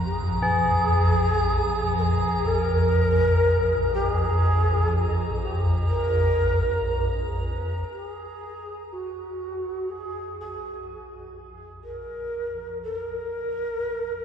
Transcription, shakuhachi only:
0.05 G#4
1.98 G#4 A#4
2.46 A4
2.58 A#4
3.93 G4
4.09 G#4
5.89 A#4
7.91 G4
8.07 G#4
8.92 F#4
9.89 G#4
10.40 G#4
11.84 A#4
12.83 A4
12.97 A#4

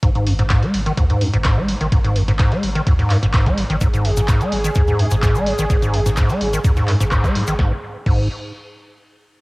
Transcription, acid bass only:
0.03 G#2
0.15 G#2
0.27 F#2
0.39 G#2
0.50 G#2
0.63 G#3
0.74 F#3
0.86 D#3
0.98 G#2
1.10 G#2
1.21 F#2
1.34 G#2
1.45 G#2
1.57 G#3
1.68 F#3
1.81 D#3
1.92 G#2
2.04 G#2
2.16 F#2
2.28 G#2
2.39 G#2
2.52 G#3
2.63 F#3
2.75 D#3
2.87 G#2
2.99 G#2
3.10 F#2
3.23 G#2
3.34 G#2
3.46 G#3
3.57 F#3
3.70 D#3
3.81 G#2
3.93 G#2
4.05 F#2
4.17 G#2
4.28 G#2
4.41 G#3
4.52 F#3
4.64 D#3
4.76 G#2
4.88 G#2
4.99 F#2
5.11 G#2
5.23 G#2
5.35 G#3
5.46 F#3
5.59 D#3
5.70 G#2
5.82 G#2
5.94 F#2
6.06 G#2
6.17 G#2
6.30 G#3
6.41 F#3
6.53 D#3
6.65 G#2
6.77 G#2
6.88 F#2
7.00 G#2
7.12 G#2
7.24 G#3
7.35 F#3
7.48 D#3
7.59 G#2
8.06 G#2

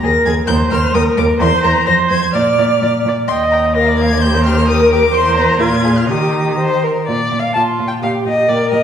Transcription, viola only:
0.03 A#4
0.49 C5
0.95 A#4
1.40 C5
1.87 C5
2.35 D5
3.29 D#5
3.75 A#4
4.22 C5
4.68 A#4
5.14 C5
5.61 F4
6.09 G4
7.56 F4
8.03 G4
8.50 A#4

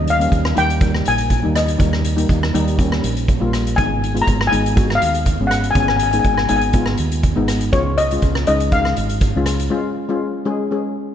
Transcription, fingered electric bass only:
Already playing: D#2
0.32 D#2
0.58 D#2
1.08 A#1
1.46 D#2
1.80 D#2
2.30 D#2
2.55 D#2
3.04 A#1
3.42 A#1
3.78 G#1
4.27 G#1
4.53 G#1
5.02 D#2
5.40 G#1
5.76 G#1
6.25 G#1
6.51 G#1
6.99 D#2
7.38 G#1
7.74 C#2
8.23 C#2
8.48 C#2
8.98 G#1
9.36 C#2

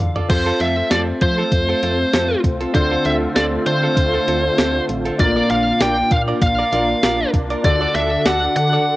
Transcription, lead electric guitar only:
0.30 C5
0.61 E5
0.91 D5
1.22 C5
2.75 C5
3.06 E5
3.36 D5
3.67 C5
5.20 D5
5.51 F5
5.82 G5
6.12 F5
6.42 F5
7.65 D5
7.95 E5
8.26 F#5
8.57 F#5

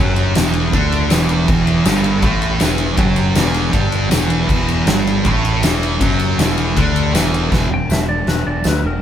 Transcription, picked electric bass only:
Already playing: F#1
0.37 E1
0.73 D2
1.13 E1
1.48 E1
1.86 G1
2.22 A1
2.62 E1
2.98 F#1
3.36 E1
3.73 G1
4.12 E1
4.49 E1
4.87 G1
5.25 A1
5.63 E1
6.01 F#1
6.39 E1
6.77 D2
7.13 E1
7.53 E1
7.69 E1
7.89 E1
8.27 E1
8.46 E1
8.66 D2
8.84 E1

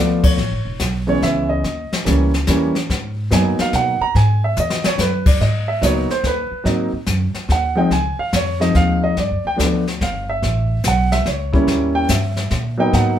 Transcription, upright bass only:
Already playing: D2
0.23 muted upright bass stroke
0.37 A1
0.52 G#1
0.65 E1
0.80 B1
1.22 C#2
1.64 D#2
1.92 muted upright bass stroke
2.06 C#2
2.48 E2
2.90 G#2
3.31 F#2
3.58 muted upright bass stroke
3.73 B2
4.01 muted upright bass stroke
4.15 G#2
4.57 E2
4.85 muted upright bass stroke
4.98 F#2
5.41 G#2
5.82 C#2
6.24 D#2
6.51 muted upright bass stroke
6.65 G#2
6.93 muted upright bass stroke
7.07 F#2
7.34 muted upright bass stroke
7.49 D#2
7.90 C#2
8.18 muted upright bass stroke
8.33 F2
8.75 D#2
9.17 G2
9.31 F2
9.45 D2
9.59 D2
10.01 G1
10.42 A1
10.84 B1
11.26 C#2
11.67 D#2
12.09 G2
12.51 A#2
12.93 G#2

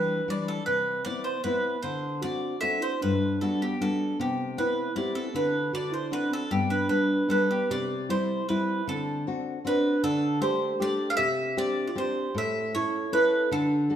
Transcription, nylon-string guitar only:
Already playing: E3 G3 D4
0.28 E3 G3 D4
0.67 C3
1.06 B3 C4 E4
1.45 B3 C4 E4
1.84 D3
2.23 C4 D4 F#4
2.62 C4 D4 F#4
3.03 G2
3.42 G3 B3 F#4
3.81 G3 B3 F#4
4.20 C3
4.57 B3 C4 E4
4.95 B3 C4 E4
5.34 D3
5.73 D3
6.11 C4 D4 F#4
6.51 G2
6.89 G3 B3 D4
7.29 G3 B3 D4
7.70 C3
8.09 G3 C4 E4
8.49 G3 C4 E4
8.87 D3
9.27 C4 D4 F#4
9.65 C4 D4 F#4
10.03 D3
10.41 A3 D4 G4
10.80 A3 D4 G4
11.18 C3
11.57 C4 D4 G4
11.95 C4 D4 G4
12.35 A2
12.74 C#4 E4 A4
13.12 C#4 E4 A4
13.51 D3
13.90 D4 F#4 A4

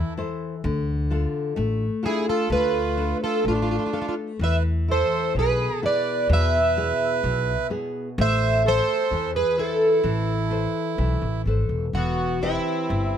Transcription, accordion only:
Already playing: E4
2.05 E4
2.28 F4
2.51 F4
3.23 F4
3.48 D4
4.42 B4
4.90 A4
5.37 G#4
5.85 B4
6.32 B4
8.20 C5
8.67 A4
9.35 G#4
9.58 E4
11.95 B3
12.43 C4

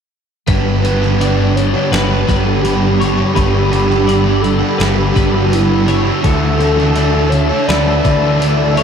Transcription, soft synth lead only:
0.49 B4
1.56 C#5
1.92 B4
2.46 A4
2.62 G4
3.34 G4
4.42 A4
4.78 G4
5.35 F#4
5.54 E4
6.23 A4
7.29 C#5
7.66 D5
8.75 E5

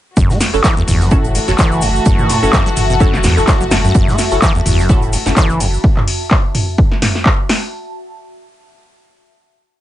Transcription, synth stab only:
0.54 C#4 E4 F#4 A4
1.11 C#4 E4 F#4 A4
1.48 C#4 E4 F#4 A4
2.42 C#4 E4 F#4 A4
3.00 C#4 E4 F#4 A4
3.37 C#4 E4 F#4 A4
4.32 C#4 E4 F#4 A4
4.89 C#4 E4 F#4 A4
5.26 C#4 E4 F#4 A4

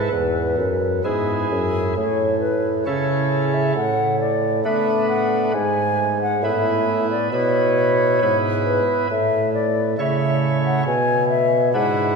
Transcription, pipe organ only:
0.12 E2
0.58 F#2
1.04 G#2 B3 E4 G#4
1.51 F#2
1.96 A2
2.86 C#3 C#4 E4 A4
3.75 A2
4.65 A3 B3 D4 B4
5.54 G#2
6.44 A2 B3 E4 B4
7.33 B2 B3 E4 B4
8.22 G#2 B3 E4 B4
9.11 A2
9.98 C#3 A3 E4 C#5
10.86 B2
11.74 G#2 D4 E4 B4

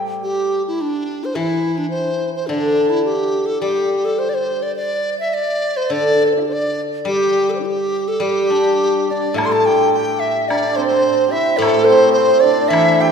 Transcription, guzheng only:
Already playing: G3
1.35 E3
2.49 D3
3.62 G3
5.90 D3
7.05 G3
8.20 G3
8.50 D4
9.34 A2
11.58 A2
12.70 E3

